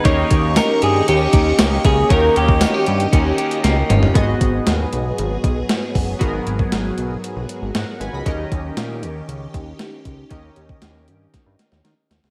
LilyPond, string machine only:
\new Staff \with { instrumentName = "String machine" } { \time 4/4 \key gis \minor \tempo 4 = 117 <g' dis'' cis'''>1~ | <g' dis'' cis'''>1 | <fis b gis'>1~ | <fis b gis'>1 |
<dis cis' g'>1~ | <dis cis' g'>1 | }